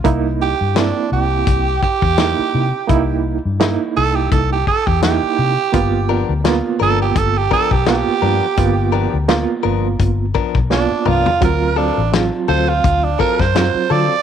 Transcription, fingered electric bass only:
X:1
M:4/4
L:1/16
Q:"Swing 16ths" 1/4=84
K:C
V:1 name="Fingered electric bass" clef=bass
C,,3 G,,2 z C,,2 C,,2 z E,,2 z C, z | C,,3 G,,2 z C,,2 C,,2 z E,,2 z C, z | G,,,3 D,,2 z G,,,2 G,,,2 z B,,,2 z G,, z | G,,,3 D,,2 z G,,,2 G,,,2 z B,,,2 z C,, z |
D,,3 A,,,2 z D,,2 D,,2 z ^F,,2 z D, z |]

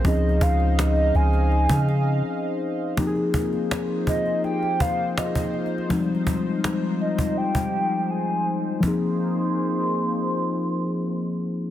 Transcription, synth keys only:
X:1
M:4/4
L:1/8
Q:1/4=82
K:Ab
V:1 name="Synth keys"
[F,CDEA]8 | [F,B,CEGA]8 | [F,G,A,CE_G]8 | [F,B,CEA]8 |]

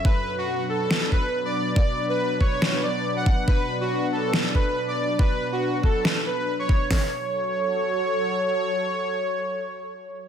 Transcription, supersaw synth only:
X:1
M:4/4
L:1/16
Q:"Swing 16ths" 1/4=140
K:F#m
V:1 name="Supersaw synth"
B2 z F2 z A3 z B2 z d2 z | d2 z B2 z c3 z d2 z f2 z | B2 z F2 z A3 z B2 z d2 z | B2 z F2 z A3 z B2 z c2 z |
c16- | c16 |]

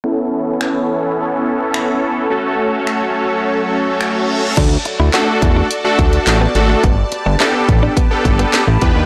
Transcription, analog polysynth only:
X:1
M:4/4
L:1/16
Q:1/4=106
K:D
V:1 name="Analog polysynth"
[B,CEA]16 | [A,CFA]16 | z4 [A,DFA]4 z [A,DFA]4 z [A,DFA]2 | z4 [B,DGA]4 z [B,DGA]4 z [B,DGB]2 |]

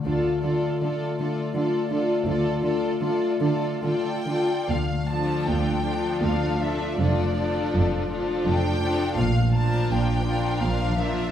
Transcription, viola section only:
X:1
M:3/4
L:1/8
Q:1/4=80
K:Dm
V:1 name="Viola section"
F F F F F F | F F F F F F | z [F,D]2 [F,D]2 [F,D] | [F,D] [F,D]2 [F,D]2 [F,D] |
z [F,D]2 [F,D]2 [F,D] |]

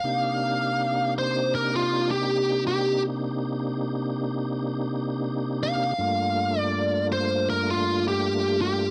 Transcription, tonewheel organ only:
X:1
M:4/4
L:1/8
Q:"Swing 16ths" 1/4=81
K:Cdor
V:1 name="Tonewheel organ"
[C,B,DEG]8- | [C,B,DEG]8 | [G,,A,B,DF]8 |]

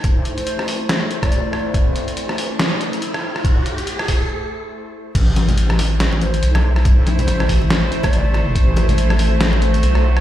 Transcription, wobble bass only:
X:1
M:4/4
L:1/8
Q:"Swing 16ths" 1/4=141
K:Ador
V:1 name="Wobble bass" clef=bass
B,,,2 A,,,3 z A,,,2 | A,,,6 B,,,2- | B,,,2 G,,,2 z4 | A,,,6 B,,,2- |
B,,,2 A,,,3 z A,,,2 | A,,,6 B,,,2 |]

